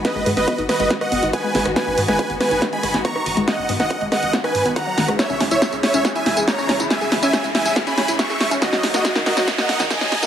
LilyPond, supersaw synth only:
\new Staff \with { instrumentName = "Supersaw synth" } { \time 4/4 \key gis \minor \tempo 4 = 140 <b' dis''>8 r16 <b' dis''>8 r16 <b' dis''>8 r16 <dis'' fis''>8 r16 <b' gis''>8. r16 | <b' gis''>8 r16 <b' gis''>8 r16 <b' gis''>8 r16 <gis'' b''>8 r16 <ais'' cis'''>8. r16 | <dis'' fis''>8 r16 <dis'' fis''>8 r16 <dis'' fis''>8 r16 <b' gis''>8 r16 <fis'' ais''>8. r16 | <cis'' e''>8 r16 <cis'' e''>8 r16 <cis'' e''>8 r16 <e'' gis''>8 r16 <cis'' ais''>8. r16 |
<e'' gis''>8 r16 <e'' gis''>8 r16 <e'' gis''>8 r16 <gis'' b''>8 r16 <e'' cis'''>8. r16 | <fis' dis''>8 r16 <fis' dis''>8 r16 <fis' dis''>8 r16 <dis'' fis''>8 r16 <dis'' gis''>8. r16 | }